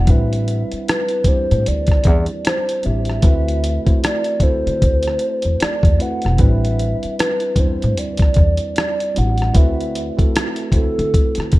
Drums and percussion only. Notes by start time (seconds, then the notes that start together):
0.07 kick, closed hi-hat
0.33 closed hi-hat
0.48 closed hi-hat
0.72 closed hi-hat
0.88 cross-stick, closed hi-hat
1.09 closed hi-hat
1.24 kick, closed hi-hat
1.51 closed hi-hat
1.66 closed hi-hat
1.87 kick, closed hi-hat
1.92 cross-stick
2.04 kick, closed hi-hat
2.26 closed hi-hat
2.45 cross-stick, closed hi-hat
2.69 closed hi-hat
2.83 closed hi-hat
3.05 closed hi-hat
3.10 cross-stick
3.22 kick, closed hi-hat
3.48 closed hi-hat
3.64 closed hi-hat
3.87 kick, closed hi-hat
4.04 cross-stick, closed hi-hat
4.24 closed hi-hat
4.40 kick, closed hi-hat
4.67 closed hi-hat
4.82 kick, closed hi-hat
5.03 closed hi-hat
5.08 cross-stick
5.19 closed hi-hat
5.42 closed hi-hat
5.60 cross-stick, closed hi-hat
5.83 kick, closed hi-hat
6.00 closed hi-hat
6.22 closed hi-hat
6.26 cross-stick
6.38 kick, closed hi-hat
6.65 closed hi-hat
6.79 closed hi-hat
7.03 closed hi-hat
7.19 cross-stick, closed hi-hat
7.40 closed hi-hat
7.56 kick, closed hi-hat
7.82 closed hi-hat
7.97 closed hi-hat
8.17 kick, closed hi-hat
8.22 cross-stick
8.34 kick, closed hi-hat
8.57 closed hi-hat
8.76 cross-stick, closed hi-hat
9.00 closed hi-hat
9.16 closed hi-hat
9.38 closed hi-hat
9.42 cross-stick
9.54 kick, closed hi-hat
9.81 closed hi-hat
9.95 closed hi-hat
10.19 kick, closed hi-hat
10.36 cross-stick, closed hi-hat
10.56 closed hi-hat
10.72 kick, closed hi-hat
10.99 closed hi-hat
11.14 kick, closed hi-hat
11.35 closed hi-hat
11.40 cross-stick
11.52 kick, closed hi-hat